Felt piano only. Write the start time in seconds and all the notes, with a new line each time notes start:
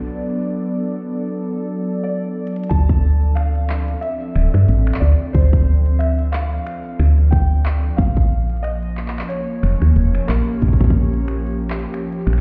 2.04 D5
2.70 A5
3.35 F5
4.01 E5
5.00 D5
5.33 C5
5.99 E5
6.32 F5
7.31 G5
7.97 F5
8.63 D#5
9.29 C#5
10.27 A#4